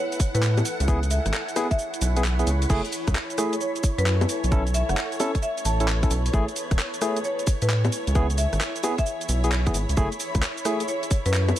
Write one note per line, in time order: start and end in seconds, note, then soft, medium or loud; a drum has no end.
0.00 6.32 E4 medium
0.00 0.65 A4 medium
0.00 0.32 C#5 medium
0.00 2.71 F#5 medium
0.00 1.50 G#5 medium
0.12 closed hi-hat medium
0.12 cabasa soft
0.20 kick loud
0.20 open hi-hat loud
0.20 cabasa medium
0.35 0.62 A2 loud
0.35 0.42 B4 loud
0.35 closed hi-hat medium
0.35 cabasa soft
0.43 clap loud
0.43 cabasa soft
0.58 closed hi-hat medium
0.58 high bongo medium
0.58 cabasa soft
0.65 open hi-hat loud
0.65 cabasa medium
0.73 3.35 C#5 medium
0.80 1.19 C#2 loud
0.80 closed hi-hat medium
0.80 cabasa soft
0.88 0.99 B3 medium
0.88 0.99 E4 medium
0.88 0.99 G#4 loud
0.88 kick loud
0.88 cabasa soft
1.03 closed hi-hat soft
1.03 cabasa soft
1.10 1.23 E5 medium
1.10 3.35 B5 medium
1.10 open hi-hat loud
1.10 cabasa medium
1.26 1.31 G#1 loud
1.26 cross-stick medium
1.26 closed hi-hat medium
1.26 cabasa soft
1.34 cross-stick medium
1.34 clap loud
1.34 cabasa soft
1.48 closed hi-hat soft
1.48 cabasa soft
1.56 1.67 B3 medium
1.56 1.67 E4 medium
1.56 1.67 G#4 medium
1.56 cross-stick medium
1.56 open hi-hat loud
1.56 high bongo medium
1.56 cabasa medium
1.71 2.17 E5 loud
1.71 kick medium
1.71 closed hi-hat medium
1.71 cabasa soft
1.79 cabasa soft
1.94 closed hi-hat medium
1.94 cabasa soft
2.02 2.44 B1 loud
2.02 open hi-hat loud
2.02 cabasa medium
2.17 2.22 B3 medium
2.17 2.22 E4 medium
2.17 2.22 G#4 medium
2.17 closed hi-hat medium
2.17 cabasa soft
2.24 clap loud
2.24 cabasa soft
2.39 2.49 B3 medium
2.39 2.49 E4 medium
2.39 2.49 G#4 medium
2.39 closed hi-hat medium
2.39 cabasa soft
2.47 2.66 C#2 loud
2.47 open hi-hat loud
2.47 cabasa medium
2.62 open hi-hat medium
2.62 cabasa soft
2.70 2.81 F#1 loud
2.70 2.80 A3 medium
2.70 2.81 E4 medium
2.70 2.80 G#4 loud
2.70 9.96 C#5 medium
2.70 kick loud
2.70 crash medium
2.70 cabasa soft
2.85 closed hi-hat soft
2.85 cabasa soft
2.90 4.29 G#5 medium
2.90 open hi-hat loud
2.90 cabasa medium
2.98 5.14 A4 medium
3.07 3.13 C#2 loud
3.07 kick loud
3.07 cross-stick medium
3.07 closed hi-hat medium
3.07 cabasa soft
3.15 cross-stick medium
3.15 clap loud
3.15 cabasa soft
3.30 closed hi-hat soft
3.30 cabasa soft
3.38 3.54 A3 medium
3.38 3.54 E4 medium
3.38 3.54 G#4 medium
3.38 cross-stick medium
3.38 open hi-hat loud
3.38 cabasa medium
3.53 closed hi-hat medium
3.53 cabasa soft
3.61 3.95 C#5 medium
3.61 cabasa soft
3.76 closed hi-hat medium
3.76 cabasa soft
3.84 kick loud
3.84 open hi-hat loud
3.84 cabasa medium
3.98 4.26 F#2 medium
3.98 4.06 B4 medium
3.98 closed hi-hat medium
3.98 cabasa soft
4.06 clap loud
4.06 cabasa soft
4.21 closed hi-hat medium
4.21 high bongo medium
4.21 cabasa soft
4.29 open hi-hat loud
4.29 cabasa medium
4.44 4.83 B1 loud
4.44 closed hi-hat medium
4.44 cabasa soft
4.52 4.62 C#4 medium
4.52 4.62 E4 medium
4.52 4.62 A4 loud
4.52 kick loud
4.52 cabasa soft
4.56 6.99 B4 medium
4.67 closed hi-hat soft
4.67 cabasa soft
4.71 4.86 E5 loud
4.71 6.34 A5 medium
4.71 open hi-hat loud
4.71 cabasa medium
4.89 4.95 F#1 loud
4.89 4.97 F#5 medium
4.89 cross-stick medium
4.89 closed hi-hat medium
4.89 cabasa soft
4.97 cross-stick medium
4.97 clap loud
4.97 cabasa soft
5.12 closed hi-hat soft
5.12 cabasa soft
5.20 5.31 C#4 medium
5.20 5.31 E4 medium
5.20 5.31 A4 medium
5.20 open hi-hat loud
5.20 high bongo medium
5.20 cabasa medium
5.35 kick medium
5.35 closed hi-hat medium
5.35 cabasa soft
5.43 5.57 E5 loud
5.43 cabasa soft
5.58 closed hi-hat medium
5.58 cabasa soft
5.65 6.07 A1 loud
5.65 6.11 A5 medium
5.65 open hi-hat loud
5.65 cabasa medium
5.80 5.86 C#4 medium
5.80 5.86 E4 medium
5.80 5.86 A4 medium
5.80 closed hi-hat medium
5.80 cabasa soft
5.88 clap loud
5.88 cabasa soft
6.03 6.13 C#4 medium
6.03 6.13 E4 medium
6.03 6.13 A4 medium
6.03 kick loud
6.03 closed hi-hat medium
6.03 cabasa soft
6.11 6.29 B1 loud
6.11 open hi-hat loud
6.11 cabasa medium
6.26 open hi-hat medium
6.26 cabasa soft
6.33 6.44 A1 loud
6.33 6.44 A3 medium
6.33 11.59 E4 medium
6.33 6.44 E4 medium
6.33 6.44 G#4 loud
6.33 kick loud
6.33 cabasa soft
6.48 closed hi-hat soft
6.48 cabasa soft
6.55 7.93 A4 medium
6.55 open hi-hat loud
6.55 cabasa medium
6.71 6.77 E1 loud
6.71 kick loud
6.71 cross-stick medium
6.71 closed hi-hat medium
6.71 cabasa soft
6.79 cross-stick medium
6.79 clap loud
6.79 cabasa soft
6.94 closed hi-hat soft
6.94 cabasa soft
7.00 7.18 A3 medium
7.00 7.18 E4 medium
7.00 7.18 G#4 medium
7.00 8.77 G#5 medium
7.00 cross-stick medium
7.00 open hi-hat loud
7.00 cabasa medium
7.16 closed hi-hat medium
7.16 cabasa soft
7.24 7.59 C#5 medium
7.24 cabasa soft
7.39 closed hi-hat soft
7.39 cabasa soft
7.47 kick loud
7.47 open hi-hat loud
7.47 cabasa medium
7.62 7.89 A2 medium
7.62 7.70 B4 medium
7.62 closed hi-hat medium
7.62 cabasa soft
7.70 clap loud
7.70 cabasa soft
7.85 closed hi-hat medium
7.85 high bongo medium
7.85 cabasa soft
7.92 open hi-hat loud
7.92 cabasa medium
8.07 8.47 C#2 loud
8.07 closed hi-hat medium
8.07 cabasa soft
8.14 8.26 B3 medium
8.14 8.26 E4 medium
8.14 8.26 G#4 loud
8.14 10.62 B5 medium
8.14 kick loud
8.14 cabasa soft
8.20 10.62 C#5 medium
8.30 closed hi-hat soft
8.30 cabasa soft
8.38 8.50 E5 loud
8.38 open hi-hat loud
8.38 cabasa medium
8.53 8.59 G#1 loud
8.53 cross-stick medium
8.53 closed hi-hat medium
8.53 cabasa soft
8.61 cross-stick medium
8.61 clap loud
8.61 cabasa soft
8.76 closed hi-hat soft
8.76 cabasa soft
8.83 8.94 B3 medium
8.83 8.94 E4 medium
8.83 8.94 G#4 medium
8.83 open hi-hat loud
8.83 high bongo medium
8.83 cabasa medium
8.98 9.44 E5 medium
8.98 kick medium
8.98 closed hi-hat medium
8.98 cabasa soft
9.06 cabasa soft
9.21 closed hi-hat medium
9.21 cabasa soft
9.29 9.71 B1 loud
9.29 open hi-hat loud
9.29 cabasa medium
9.44 9.50 B3 medium
9.44 9.50 E4 medium
9.44 9.50 G#4 medium
9.44 closed hi-hat medium
9.44 cabasa soft
9.52 clap loud
9.52 cabasa soft
9.67 9.76 B3 medium
9.67 9.77 E4 medium
9.67 9.76 G#4 medium
9.67 kick loud
9.67 closed hi-hat soft
9.67 cabasa soft
9.74 9.85 G#1 loud
9.74 open hi-hat loud
9.74 cabasa medium
9.89 9.95 C#2 loud
9.89 open hi-hat medium
9.89 cabasa soft
9.97 10.08 F#1 loud
9.97 10.08 A3 medium
9.97 10.08 E4 medium
9.97 10.08 G#4 loud
9.97 11.59 C#5 medium
9.97 kick loud
9.97 cabasa soft
10.12 closed hi-hat soft
10.12 cabasa soft
10.20 open hi-hat loud
10.20 cabasa medium
10.35 10.41 C#2 loud
10.35 kick loud
10.35 cross-stick soft
10.35 closed hi-hat medium
10.35 cabasa soft
10.41 11.59 A4 medium
10.41 cross-stick medium
10.41 clap loud
10.41 cabasa soft
10.58 closed hi-hat soft
10.58 cabasa soft
10.65 10.81 A3 medium
10.65 10.81 E4 medium
10.65 10.81 G#4 medium
10.65 cross-stick medium
10.65 open hi-hat loud
10.65 cabasa medium
10.80 closed hi-hat medium
10.80 cabasa soft
10.88 11.23 C#5 medium
10.88 cabasa soft
11.03 closed hi-hat medium
11.03 cabasa soft
11.11 kick loud
11.11 open hi-hat loud
11.11 cabasa medium
11.26 11.53 F#2 medium
11.26 11.33 B4 medium
11.26 closed hi-hat medium
11.26 cabasa soft
11.34 clap loud
11.34 cabasa soft
11.49 closed hi-hat medium
11.49 high bongo medium
11.49 cabasa soft